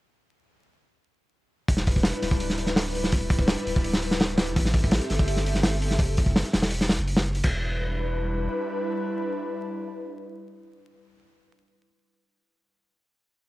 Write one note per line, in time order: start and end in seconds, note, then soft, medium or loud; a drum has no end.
1.68 2.12 E1 loud
1.68 2.92 G3 medium
1.68 2.92 D4 medium
1.68 2.92 E4 medium
1.68 2.92 B4 loud
1.68 kick loud
1.68 open hi-hat medium
1.77 snare medium
1.87 kick loud
1.87 open hi-hat medium
1.96 kick medium
2.03 snare loud
2.03 open hi-hat loud
2.14 closed hi-hat soft
2.22 3.56 D1 medium
2.22 snare soft
2.22 open hi-hat medium
2.31 kick medium
2.40 open hi-hat medium
2.50 snare soft
2.58 open hi-hat medium
2.67 snare soft
2.76 snare loud
2.76 open hi-hat medium
2.95 open hi-hat medium
3.04 snare soft
3.12 4.36 G3 loud
3.12 4.36 D4 medium
3.12 4.36 E4 medium
3.12 4.36 B4 loud
3.12 kick loud
3.12 open hi-hat medium
3.30 kick loud
3.30 open hi-hat medium
3.39 kick loud
3.48 snare loud
3.48 open hi-hat medium
3.58 closed hi-hat soft
3.66 4.49 D1 medium
3.66 open hi-hat medium
3.76 kick loud
3.84 open hi-hat medium
3.93 snare medium
4.02 open hi-hat medium
4.11 snare medium
4.20 snare loud
4.20 open hi-hat medium
4.29 closed hi-hat soft
4.38 snare loud
4.38 open hi-hat medium
4.47 4.55 E1 medium
4.47 closed hi-hat soft
4.56 5.00 A1 loud
4.56 5.80 C4 medium
4.56 5.80 G4 medium
4.56 5.80 A4 medium
4.56 5.80 E5 loud
4.56 kick loud
4.56 open hi-hat medium
4.65 snare medium
4.74 kick loud
4.74 open hi-hat medium
4.84 kick medium
4.91 snare loud
4.91 open hi-hat loud
5.01 closed hi-hat soft
5.10 5.98 G1 medium
5.10 snare soft
5.10 open hi-hat medium
5.19 kick loud
5.28 open hi-hat medium
5.36 snare soft
5.46 open hi-hat medium
5.55 snare soft
5.63 snare loud
5.63 open hi-hat medium
5.82 open hi-hat medium
5.91 snare soft
5.99 6.43 F#1 medium
5.99 kick loud
5.99 open hi-hat medium
6.17 kick loud
6.17 open hi-hat medium
6.26 kick medium
6.36 snare loud
6.36 open hi-hat medium
6.45 closed hi-hat soft
6.53 6.98 E1 medium
6.53 snare loud
6.53 open hi-hat medium
6.62 snare loud
6.62 open hi-hat medium
6.71 open hi-hat medium
6.81 snare medium
6.89 snare loud
6.89 open hi-hat medium
6.98 7.42 F#1 medium
6.98 closed hi-hat soft
7.07 open hi-hat medium
7.17 snare loud
7.17 open hi-hat medium
7.26 closed hi-hat soft
7.35 open hi-hat medium
7.43 8.48 E1 loud
7.43 11.07 G3 loud
7.43 11.07 D4 medium
7.43 11.07 E4 loud
7.43 11.07 B4 loud
7.43 kick loud
7.43 crash medium